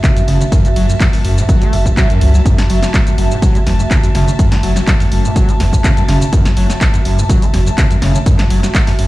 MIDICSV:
0, 0, Header, 1, 6, 480
1, 0, Start_track
1, 0, Key_signature, 3, "minor"
1, 0, Tempo, 483871
1, 516, Time_signature, 4, 2, 24, 8
1, 9000, End_track
2, 0, Start_track
2, 0, Title_t, "String section"
2, 0, Program_c, 0, 48
2, 0, Note_on_c, 0, 66, 77
2, 0, Note_on_c, 0, 76, 70
2, 0, Note_on_c, 0, 81, 71
2, 9000, Note_off_c, 0, 66, 0
2, 9000, Note_off_c, 0, 76, 0
2, 9000, Note_off_c, 0, 81, 0
2, 9000, End_track
3, 0, Start_track
3, 0, Title_t, "Ambient pad"
3, 0, Program_c, 1, 92
3, 0, Note_on_c, 1, 57, 79
3, 0, Note_on_c, 1, 66, 74
3, 0, Note_on_c, 1, 76, 87
3, 2421, Note_off_c, 1, 76, 0
3, 2438, Note_on_c, 1, 81, 89
3, 9000, Note_off_c, 1, 57, 0
3, 9000, Note_off_c, 1, 66, 0
3, 9000, Note_off_c, 1, 81, 0
3, 9000, End_track
4, 0, Start_track
4, 0, Title_t, "Acid bass"
4, 0, Program_c, 2, 38
4, 34, Note_on_c, 2, 49, 87
4, 105, Note_off_c, 2, 49, 0
4, 160, Note_on_c, 2, 42, 78
4, 224, Note_off_c, 2, 42, 0
4, 274, Note_on_c, 2, 49, 100
4, 379, Note_off_c, 2, 49, 0
4, 400, Note_on_c, 2, 49, 99
4, 439, Note_off_c, 2, 49, 0
4, 515, Note_on_c, 2, 42, 98
4, 642, Note_on_c, 2, 57, 104
4, 657, Note_off_c, 2, 42, 0
4, 680, Note_off_c, 2, 57, 0
4, 755, Note_on_c, 2, 54, 75
4, 860, Note_off_c, 2, 54, 0
4, 883, Note_on_c, 2, 42, 75
4, 945, Note_off_c, 2, 42, 0
4, 996, Note_on_c, 2, 54, 100
4, 1066, Note_off_c, 2, 54, 0
4, 1123, Note_on_c, 2, 42, 79
4, 1185, Note_off_c, 2, 42, 0
4, 1236, Note_on_c, 2, 42, 76
4, 1363, Note_on_c, 2, 45, 101
4, 1377, Note_off_c, 2, 42, 0
4, 1425, Note_off_c, 2, 45, 0
4, 1476, Note_on_c, 2, 54, 84
4, 1602, Note_on_c, 2, 57, 102
4, 1617, Note_off_c, 2, 54, 0
4, 1716, Note_on_c, 2, 30, 99
4, 1731, Note_off_c, 2, 57, 0
4, 1758, Note_off_c, 2, 30, 0
4, 1841, Note_on_c, 2, 30, 103
4, 1880, Note_off_c, 2, 30, 0
4, 1955, Note_on_c, 2, 54, 83
4, 2060, Note_off_c, 2, 54, 0
4, 2082, Note_on_c, 2, 42, 99
4, 2176, Note_off_c, 2, 42, 0
4, 2196, Note_on_c, 2, 42, 75
4, 2301, Note_off_c, 2, 42, 0
4, 2323, Note_on_c, 2, 54, 74
4, 2385, Note_off_c, 2, 54, 0
4, 2436, Note_on_c, 2, 42, 100
4, 2563, Note_on_c, 2, 57, 105
4, 2578, Note_off_c, 2, 42, 0
4, 2600, Note_off_c, 2, 57, 0
4, 2677, Note_on_c, 2, 54, 75
4, 2781, Note_off_c, 2, 54, 0
4, 2802, Note_on_c, 2, 54, 99
4, 2840, Note_off_c, 2, 54, 0
4, 2915, Note_on_c, 2, 54, 98
4, 2985, Note_off_c, 2, 54, 0
4, 3042, Note_on_c, 2, 42, 79
4, 3105, Note_off_c, 2, 42, 0
4, 3155, Note_on_c, 2, 42, 76
4, 3281, Note_on_c, 2, 45, 104
4, 3296, Note_off_c, 2, 42, 0
4, 3344, Note_off_c, 2, 45, 0
4, 3395, Note_on_c, 2, 54, 85
4, 3521, Note_on_c, 2, 57, 102
4, 3535, Note_off_c, 2, 54, 0
4, 3559, Note_off_c, 2, 57, 0
4, 3634, Note_on_c, 2, 40, 101
4, 3705, Note_off_c, 2, 40, 0
4, 3761, Note_on_c, 2, 42, 78
4, 3799, Note_off_c, 2, 42, 0
4, 3874, Note_on_c, 2, 49, 84
4, 3945, Note_off_c, 2, 49, 0
4, 4002, Note_on_c, 2, 42, 75
4, 4065, Note_off_c, 2, 42, 0
4, 4114, Note_on_c, 2, 49, 97
4, 4220, Note_off_c, 2, 49, 0
4, 4240, Note_on_c, 2, 49, 101
4, 4279, Note_off_c, 2, 49, 0
4, 4354, Note_on_c, 2, 42, 102
4, 4481, Note_on_c, 2, 57, 106
4, 4496, Note_off_c, 2, 42, 0
4, 4519, Note_off_c, 2, 57, 0
4, 4595, Note_on_c, 2, 54, 75
4, 4700, Note_off_c, 2, 54, 0
4, 4722, Note_on_c, 2, 54, 104
4, 4760, Note_off_c, 2, 54, 0
4, 4835, Note_on_c, 2, 54, 100
4, 4905, Note_off_c, 2, 54, 0
4, 4962, Note_on_c, 2, 42, 79
4, 5025, Note_off_c, 2, 42, 0
4, 5075, Note_on_c, 2, 42, 78
4, 5202, Note_on_c, 2, 45, 103
4, 5217, Note_off_c, 2, 42, 0
4, 5265, Note_off_c, 2, 45, 0
4, 5316, Note_on_c, 2, 54, 85
4, 5443, Note_on_c, 2, 57, 105
4, 5458, Note_off_c, 2, 54, 0
4, 5481, Note_off_c, 2, 57, 0
4, 5556, Note_on_c, 2, 40, 103
4, 5626, Note_off_c, 2, 40, 0
4, 5683, Note_on_c, 2, 42, 77
4, 5720, Note_off_c, 2, 42, 0
4, 5795, Note_on_c, 2, 49, 87
4, 5865, Note_off_c, 2, 49, 0
4, 5922, Note_on_c, 2, 42, 76
4, 5985, Note_off_c, 2, 42, 0
4, 6036, Note_on_c, 2, 49, 102
4, 6140, Note_off_c, 2, 49, 0
4, 6162, Note_on_c, 2, 49, 98
4, 6200, Note_off_c, 2, 49, 0
4, 6276, Note_on_c, 2, 42, 98
4, 6401, Note_on_c, 2, 57, 101
4, 6416, Note_off_c, 2, 42, 0
4, 6439, Note_off_c, 2, 57, 0
4, 6515, Note_on_c, 2, 54, 75
4, 6620, Note_off_c, 2, 54, 0
4, 6641, Note_on_c, 2, 54, 103
4, 6679, Note_off_c, 2, 54, 0
4, 6755, Note_on_c, 2, 54, 104
4, 6825, Note_off_c, 2, 54, 0
4, 6882, Note_on_c, 2, 42, 79
4, 6944, Note_off_c, 2, 42, 0
4, 6994, Note_on_c, 2, 42, 79
4, 7121, Note_on_c, 2, 45, 100
4, 7136, Note_off_c, 2, 42, 0
4, 7184, Note_off_c, 2, 45, 0
4, 7235, Note_on_c, 2, 54, 84
4, 7361, Note_on_c, 2, 57, 103
4, 7376, Note_off_c, 2, 54, 0
4, 7400, Note_off_c, 2, 57, 0
4, 7475, Note_on_c, 2, 40, 100
4, 7545, Note_off_c, 2, 40, 0
4, 7603, Note_on_c, 2, 42, 79
4, 7640, Note_off_c, 2, 42, 0
4, 7714, Note_on_c, 2, 49, 85
4, 7785, Note_off_c, 2, 49, 0
4, 7843, Note_on_c, 2, 42, 76
4, 7905, Note_off_c, 2, 42, 0
4, 7956, Note_on_c, 2, 49, 103
4, 8061, Note_off_c, 2, 49, 0
4, 8082, Note_on_c, 2, 49, 96
4, 8120, Note_off_c, 2, 49, 0
4, 8196, Note_on_c, 2, 42, 99
4, 8323, Note_on_c, 2, 57, 100
4, 8338, Note_off_c, 2, 42, 0
4, 8360, Note_off_c, 2, 57, 0
4, 8435, Note_on_c, 2, 54, 75
4, 8540, Note_off_c, 2, 54, 0
4, 8563, Note_on_c, 2, 54, 100
4, 8600, Note_off_c, 2, 54, 0
4, 8676, Note_on_c, 2, 54, 102
4, 8746, Note_off_c, 2, 54, 0
4, 8803, Note_on_c, 2, 42, 76
4, 8865, Note_off_c, 2, 42, 0
4, 8915, Note_on_c, 2, 42, 78
4, 9000, Note_off_c, 2, 42, 0
4, 9000, End_track
5, 0, Start_track
5, 0, Title_t, "Analog synth bass"
5, 0, Program_c, 3, 38
5, 276, Note_on_c, 3, 30, 79
5, 456, Note_off_c, 3, 30, 0
5, 756, Note_on_c, 3, 30, 99
5, 936, Note_off_c, 3, 30, 0
5, 1236, Note_on_c, 3, 30, 79
5, 1416, Note_off_c, 3, 30, 0
5, 1716, Note_on_c, 3, 30, 98
5, 1896, Note_off_c, 3, 30, 0
5, 2197, Note_on_c, 3, 37, 100
5, 2376, Note_off_c, 3, 37, 0
5, 2678, Note_on_c, 3, 30, 99
5, 2857, Note_off_c, 3, 30, 0
5, 3156, Note_on_c, 3, 30, 79
5, 3336, Note_off_c, 3, 30, 0
5, 3636, Note_on_c, 3, 30, 95
5, 3816, Note_off_c, 3, 30, 0
5, 4116, Note_on_c, 3, 30, 84
5, 4296, Note_off_c, 3, 30, 0
5, 4597, Note_on_c, 3, 30, 100
5, 4776, Note_off_c, 3, 30, 0
5, 5077, Note_on_c, 3, 30, 79
5, 5257, Note_off_c, 3, 30, 0
5, 5557, Note_on_c, 3, 30, 94
5, 5737, Note_off_c, 3, 30, 0
5, 6038, Note_on_c, 3, 30, 80
5, 6217, Note_off_c, 3, 30, 0
5, 6517, Note_on_c, 3, 30, 101
5, 6697, Note_off_c, 3, 30, 0
5, 6997, Note_on_c, 3, 30, 78
5, 7176, Note_off_c, 3, 30, 0
5, 7478, Note_on_c, 3, 30, 97
5, 7657, Note_off_c, 3, 30, 0
5, 7957, Note_on_c, 3, 30, 82
5, 8136, Note_off_c, 3, 30, 0
5, 8437, Note_on_c, 3, 30, 98
5, 8617, Note_off_c, 3, 30, 0
5, 8917, Note_on_c, 3, 30, 81
5, 9000, Note_off_c, 3, 30, 0
5, 9000, End_track
6, 0, Start_track
6, 0, Title_t, "Drums"
6, 36, Note_on_c, 9, 36, 122
6, 37, Note_on_c, 9, 42, 77
6, 38, Note_on_c, 9, 39, 119
6, 42, Note_on_c, 9, 82, 51
6, 135, Note_off_c, 9, 36, 0
6, 136, Note_off_c, 9, 42, 0
6, 137, Note_off_c, 9, 39, 0
6, 141, Note_off_c, 9, 82, 0
6, 164, Note_on_c, 9, 42, 52
6, 169, Note_on_c, 9, 82, 32
6, 263, Note_off_c, 9, 42, 0
6, 269, Note_off_c, 9, 82, 0
6, 277, Note_on_c, 9, 46, 110
6, 376, Note_off_c, 9, 46, 0
6, 403, Note_on_c, 9, 42, 35
6, 409, Note_on_c, 9, 82, 64
6, 503, Note_off_c, 9, 42, 0
6, 508, Note_off_c, 9, 82, 0
6, 516, Note_on_c, 9, 36, 119
6, 517, Note_on_c, 9, 42, 75
6, 522, Note_on_c, 9, 82, 53
6, 615, Note_off_c, 9, 36, 0
6, 616, Note_off_c, 9, 42, 0
6, 621, Note_off_c, 9, 82, 0
6, 644, Note_on_c, 9, 42, 49
6, 649, Note_on_c, 9, 82, 32
6, 743, Note_off_c, 9, 42, 0
6, 748, Note_off_c, 9, 82, 0
6, 756, Note_on_c, 9, 46, 107
6, 856, Note_off_c, 9, 46, 0
6, 888, Note_on_c, 9, 82, 65
6, 987, Note_off_c, 9, 82, 0
6, 996, Note_on_c, 9, 36, 116
6, 997, Note_on_c, 9, 42, 73
6, 998, Note_on_c, 9, 39, 116
6, 1002, Note_on_c, 9, 82, 51
6, 1095, Note_off_c, 9, 36, 0
6, 1096, Note_off_c, 9, 42, 0
6, 1097, Note_off_c, 9, 39, 0
6, 1101, Note_off_c, 9, 82, 0
6, 1123, Note_on_c, 9, 46, 62
6, 1128, Note_on_c, 9, 82, 32
6, 1222, Note_off_c, 9, 46, 0
6, 1227, Note_off_c, 9, 82, 0
6, 1236, Note_on_c, 9, 46, 104
6, 1335, Note_off_c, 9, 46, 0
6, 1368, Note_on_c, 9, 82, 62
6, 1468, Note_off_c, 9, 82, 0
6, 1476, Note_on_c, 9, 36, 123
6, 1477, Note_on_c, 9, 42, 72
6, 1482, Note_on_c, 9, 82, 52
6, 1575, Note_off_c, 9, 36, 0
6, 1576, Note_off_c, 9, 42, 0
6, 1581, Note_off_c, 9, 82, 0
6, 1603, Note_on_c, 9, 42, 50
6, 1608, Note_on_c, 9, 82, 33
6, 1702, Note_off_c, 9, 42, 0
6, 1708, Note_off_c, 9, 82, 0
6, 1716, Note_on_c, 9, 46, 106
6, 1816, Note_off_c, 9, 46, 0
6, 1842, Note_on_c, 9, 36, 62
6, 1843, Note_on_c, 9, 42, 34
6, 1848, Note_on_c, 9, 82, 63
6, 1942, Note_off_c, 9, 36, 0
6, 1943, Note_off_c, 9, 42, 0
6, 1948, Note_off_c, 9, 82, 0
6, 1956, Note_on_c, 9, 36, 117
6, 1957, Note_on_c, 9, 42, 73
6, 1958, Note_on_c, 9, 39, 115
6, 1962, Note_on_c, 9, 82, 52
6, 2055, Note_off_c, 9, 36, 0
6, 2056, Note_off_c, 9, 42, 0
6, 2057, Note_off_c, 9, 39, 0
6, 2061, Note_off_c, 9, 82, 0
6, 2083, Note_on_c, 9, 42, 50
6, 2088, Note_on_c, 9, 82, 33
6, 2182, Note_off_c, 9, 42, 0
6, 2188, Note_off_c, 9, 82, 0
6, 2196, Note_on_c, 9, 46, 108
6, 2295, Note_off_c, 9, 46, 0
6, 2323, Note_on_c, 9, 42, 34
6, 2328, Note_on_c, 9, 82, 62
6, 2422, Note_off_c, 9, 42, 0
6, 2427, Note_off_c, 9, 82, 0
6, 2436, Note_on_c, 9, 36, 117
6, 2437, Note_on_c, 9, 42, 74
6, 2442, Note_on_c, 9, 82, 55
6, 2535, Note_off_c, 9, 36, 0
6, 2536, Note_off_c, 9, 42, 0
6, 2541, Note_off_c, 9, 82, 0
6, 2564, Note_on_c, 9, 38, 88
6, 2564, Note_on_c, 9, 42, 51
6, 2569, Note_on_c, 9, 82, 33
6, 2663, Note_off_c, 9, 38, 0
6, 2663, Note_off_c, 9, 42, 0
6, 2668, Note_off_c, 9, 82, 0
6, 2676, Note_on_c, 9, 46, 108
6, 2776, Note_off_c, 9, 46, 0
6, 2803, Note_on_c, 9, 38, 63
6, 2808, Note_on_c, 9, 82, 65
6, 2902, Note_off_c, 9, 38, 0
6, 2907, Note_off_c, 9, 82, 0
6, 2916, Note_on_c, 9, 36, 116
6, 2916, Note_on_c, 9, 42, 75
6, 2917, Note_on_c, 9, 39, 109
6, 2921, Note_on_c, 9, 82, 55
6, 3015, Note_off_c, 9, 36, 0
6, 3015, Note_off_c, 9, 42, 0
6, 3017, Note_off_c, 9, 39, 0
6, 3020, Note_off_c, 9, 82, 0
6, 3043, Note_on_c, 9, 42, 49
6, 3048, Note_on_c, 9, 82, 34
6, 3142, Note_off_c, 9, 42, 0
6, 3147, Note_off_c, 9, 82, 0
6, 3156, Note_on_c, 9, 46, 106
6, 3255, Note_off_c, 9, 46, 0
6, 3288, Note_on_c, 9, 82, 67
6, 3387, Note_off_c, 9, 82, 0
6, 3396, Note_on_c, 9, 36, 119
6, 3396, Note_on_c, 9, 42, 71
6, 3401, Note_on_c, 9, 82, 54
6, 3495, Note_off_c, 9, 36, 0
6, 3495, Note_off_c, 9, 42, 0
6, 3500, Note_off_c, 9, 82, 0
6, 3523, Note_on_c, 9, 42, 53
6, 3528, Note_on_c, 9, 82, 34
6, 3622, Note_off_c, 9, 42, 0
6, 3627, Note_off_c, 9, 82, 0
6, 3637, Note_on_c, 9, 38, 61
6, 3637, Note_on_c, 9, 46, 103
6, 3736, Note_off_c, 9, 38, 0
6, 3736, Note_off_c, 9, 46, 0
6, 3763, Note_on_c, 9, 42, 34
6, 3768, Note_on_c, 9, 82, 65
6, 3862, Note_off_c, 9, 42, 0
6, 3867, Note_off_c, 9, 82, 0
6, 3875, Note_on_c, 9, 36, 116
6, 3876, Note_on_c, 9, 42, 73
6, 3878, Note_on_c, 9, 39, 109
6, 3882, Note_on_c, 9, 82, 55
6, 3975, Note_off_c, 9, 36, 0
6, 3976, Note_off_c, 9, 42, 0
6, 3977, Note_off_c, 9, 39, 0
6, 3981, Note_off_c, 9, 82, 0
6, 4002, Note_on_c, 9, 42, 50
6, 4007, Note_on_c, 9, 82, 34
6, 4102, Note_off_c, 9, 42, 0
6, 4107, Note_off_c, 9, 82, 0
6, 4116, Note_on_c, 9, 38, 62
6, 4116, Note_on_c, 9, 46, 105
6, 4215, Note_off_c, 9, 38, 0
6, 4215, Note_off_c, 9, 46, 0
6, 4243, Note_on_c, 9, 42, 35
6, 4248, Note_on_c, 9, 82, 67
6, 4342, Note_off_c, 9, 42, 0
6, 4347, Note_off_c, 9, 82, 0
6, 4355, Note_on_c, 9, 36, 114
6, 4356, Note_on_c, 9, 42, 76
6, 4361, Note_on_c, 9, 82, 56
6, 4454, Note_off_c, 9, 36, 0
6, 4455, Note_off_c, 9, 42, 0
6, 4460, Note_off_c, 9, 82, 0
6, 4482, Note_on_c, 9, 38, 85
6, 4482, Note_on_c, 9, 42, 53
6, 4487, Note_on_c, 9, 82, 35
6, 4581, Note_off_c, 9, 38, 0
6, 4581, Note_off_c, 9, 42, 0
6, 4586, Note_off_c, 9, 82, 0
6, 4595, Note_on_c, 9, 46, 101
6, 4694, Note_off_c, 9, 46, 0
6, 4721, Note_on_c, 9, 38, 60
6, 4726, Note_on_c, 9, 82, 69
6, 4820, Note_off_c, 9, 38, 0
6, 4826, Note_off_c, 9, 82, 0
6, 4835, Note_on_c, 9, 36, 115
6, 4835, Note_on_c, 9, 42, 76
6, 4837, Note_on_c, 9, 39, 113
6, 4840, Note_on_c, 9, 82, 58
6, 4934, Note_off_c, 9, 36, 0
6, 4935, Note_off_c, 9, 42, 0
6, 4936, Note_off_c, 9, 39, 0
6, 4940, Note_off_c, 9, 82, 0
6, 4962, Note_on_c, 9, 46, 58
6, 4968, Note_on_c, 9, 82, 34
6, 5062, Note_off_c, 9, 46, 0
6, 5067, Note_off_c, 9, 82, 0
6, 5076, Note_on_c, 9, 46, 99
6, 5175, Note_off_c, 9, 46, 0
6, 5208, Note_on_c, 9, 82, 67
6, 5308, Note_off_c, 9, 82, 0
6, 5315, Note_on_c, 9, 36, 114
6, 5316, Note_on_c, 9, 42, 74
6, 5321, Note_on_c, 9, 82, 55
6, 5415, Note_off_c, 9, 36, 0
6, 5416, Note_off_c, 9, 42, 0
6, 5421, Note_off_c, 9, 82, 0
6, 5443, Note_on_c, 9, 42, 53
6, 5448, Note_on_c, 9, 82, 35
6, 5542, Note_off_c, 9, 42, 0
6, 5547, Note_off_c, 9, 82, 0
6, 5556, Note_on_c, 9, 38, 62
6, 5556, Note_on_c, 9, 46, 101
6, 5655, Note_off_c, 9, 38, 0
6, 5655, Note_off_c, 9, 46, 0
6, 5682, Note_on_c, 9, 36, 58
6, 5683, Note_on_c, 9, 42, 35
6, 5688, Note_on_c, 9, 82, 67
6, 5782, Note_off_c, 9, 36, 0
6, 5782, Note_off_c, 9, 42, 0
6, 5787, Note_off_c, 9, 82, 0
6, 5796, Note_on_c, 9, 36, 115
6, 5796, Note_on_c, 9, 42, 77
6, 5798, Note_on_c, 9, 39, 114
6, 5801, Note_on_c, 9, 82, 58
6, 5895, Note_off_c, 9, 36, 0
6, 5895, Note_off_c, 9, 42, 0
6, 5897, Note_off_c, 9, 39, 0
6, 5901, Note_off_c, 9, 82, 0
6, 5923, Note_on_c, 9, 42, 52
6, 5929, Note_on_c, 9, 82, 35
6, 6023, Note_off_c, 9, 42, 0
6, 6028, Note_off_c, 9, 82, 0
6, 6036, Note_on_c, 9, 38, 61
6, 6036, Note_on_c, 9, 46, 99
6, 6136, Note_off_c, 9, 38, 0
6, 6136, Note_off_c, 9, 46, 0
6, 6163, Note_on_c, 9, 42, 36
6, 6168, Note_on_c, 9, 82, 71
6, 6262, Note_off_c, 9, 42, 0
6, 6268, Note_off_c, 9, 82, 0
6, 6276, Note_on_c, 9, 36, 110
6, 6276, Note_on_c, 9, 42, 80
6, 6281, Note_on_c, 9, 82, 58
6, 6375, Note_off_c, 9, 36, 0
6, 6375, Note_off_c, 9, 42, 0
6, 6380, Note_off_c, 9, 82, 0
6, 6402, Note_on_c, 9, 38, 81
6, 6402, Note_on_c, 9, 42, 54
6, 6408, Note_on_c, 9, 82, 35
6, 6502, Note_off_c, 9, 38, 0
6, 6502, Note_off_c, 9, 42, 0
6, 6507, Note_off_c, 9, 82, 0
6, 6515, Note_on_c, 9, 46, 102
6, 6615, Note_off_c, 9, 46, 0
6, 6643, Note_on_c, 9, 38, 59
6, 6648, Note_on_c, 9, 82, 73
6, 6742, Note_off_c, 9, 38, 0
6, 6747, Note_off_c, 9, 82, 0
6, 6756, Note_on_c, 9, 36, 112
6, 6756, Note_on_c, 9, 42, 81
6, 6757, Note_on_c, 9, 39, 113
6, 6761, Note_on_c, 9, 82, 59
6, 6855, Note_off_c, 9, 36, 0
6, 6855, Note_off_c, 9, 42, 0
6, 6857, Note_off_c, 9, 39, 0
6, 6860, Note_off_c, 9, 82, 0
6, 6883, Note_on_c, 9, 42, 53
6, 6888, Note_on_c, 9, 82, 34
6, 6982, Note_off_c, 9, 42, 0
6, 6987, Note_off_c, 9, 82, 0
6, 6996, Note_on_c, 9, 46, 100
6, 7095, Note_off_c, 9, 46, 0
6, 7129, Note_on_c, 9, 82, 71
6, 7228, Note_off_c, 9, 82, 0
6, 7236, Note_on_c, 9, 36, 113
6, 7237, Note_on_c, 9, 42, 78
6, 7242, Note_on_c, 9, 82, 56
6, 7335, Note_off_c, 9, 36, 0
6, 7336, Note_off_c, 9, 42, 0
6, 7341, Note_off_c, 9, 82, 0
6, 7364, Note_on_c, 9, 42, 57
6, 7369, Note_on_c, 9, 82, 37
6, 7463, Note_off_c, 9, 42, 0
6, 7468, Note_off_c, 9, 82, 0
6, 7477, Note_on_c, 9, 38, 58
6, 7477, Note_on_c, 9, 46, 100
6, 7576, Note_off_c, 9, 38, 0
6, 7576, Note_off_c, 9, 46, 0
6, 7604, Note_on_c, 9, 42, 36
6, 7609, Note_on_c, 9, 82, 69
6, 7703, Note_off_c, 9, 42, 0
6, 7708, Note_off_c, 9, 82, 0
6, 7716, Note_on_c, 9, 36, 113
6, 7717, Note_on_c, 9, 42, 81
6, 7718, Note_on_c, 9, 39, 114
6, 7722, Note_on_c, 9, 82, 58
6, 7815, Note_off_c, 9, 36, 0
6, 7816, Note_off_c, 9, 42, 0
6, 7817, Note_off_c, 9, 39, 0
6, 7821, Note_off_c, 9, 82, 0
6, 7843, Note_on_c, 9, 42, 53
6, 7848, Note_on_c, 9, 82, 35
6, 7942, Note_off_c, 9, 42, 0
6, 7947, Note_off_c, 9, 82, 0
6, 7956, Note_on_c, 9, 38, 57
6, 7956, Note_on_c, 9, 46, 103
6, 8055, Note_off_c, 9, 38, 0
6, 8055, Note_off_c, 9, 46, 0
6, 8083, Note_on_c, 9, 42, 37
6, 8088, Note_on_c, 9, 82, 70
6, 8182, Note_off_c, 9, 42, 0
6, 8187, Note_off_c, 9, 82, 0
6, 8196, Note_on_c, 9, 36, 113
6, 8196, Note_on_c, 9, 42, 83
6, 8201, Note_on_c, 9, 82, 56
6, 8295, Note_off_c, 9, 36, 0
6, 8295, Note_off_c, 9, 42, 0
6, 8300, Note_off_c, 9, 82, 0
6, 8323, Note_on_c, 9, 38, 82
6, 8323, Note_on_c, 9, 42, 55
6, 8324, Note_on_c, 9, 39, 39
6, 8328, Note_on_c, 9, 82, 36
6, 8422, Note_off_c, 9, 38, 0
6, 8422, Note_off_c, 9, 42, 0
6, 8423, Note_off_c, 9, 39, 0
6, 8427, Note_off_c, 9, 82, 0
6, 8436, Note_on_c, 9, 46, 99
6, 8535, Note_off_c, 9, 46, 0
6, 8563, Note_on_c, 9, 38, 60
6, 8563, Note_on_c, 9, 42, 38
6, 8568, Note_on_c, 9, 82, 68
6, 8662, Note_off_c, 9, 38, 0
6, 8662, Note_off_c, 9, 42, 0
6, 8667, Note_off_c, 9, 82, 0
6, 8675, Note_on_c, 9, 36, 109
6, 8676, Note_on_c, 9, 42, 80
6, 8677, Note_on_c, 9, 39, 119
6, 8681, Note_on_c, 9, 82, 58
6, 8775, Note_off_c, 9, 36, 0
6, 8775, Note_off_c, 9, 42, 0
6, 8776, Note_off_c, 9, 39, 0
6, 8780, Note_off_c, 9, 82, 0
6, 8802, Note_on_c, 9, 38, 35
6, 8802, Note_on_c, 9, 46, 59
6, 8807, Note_on_c, 9, 82, 35
6, 8901, Note_off_c, 9, 38, 0
6, 8901, Note_off_c, 9, 46, 0
6, 8906, Note_off_c, 9, 82, 0
6, 8915, Note_on_c, 9, 46, 100
6, 9000, Note_off_c, 9, 46, 0
6, 9000, End_track
0, 0, End_of_file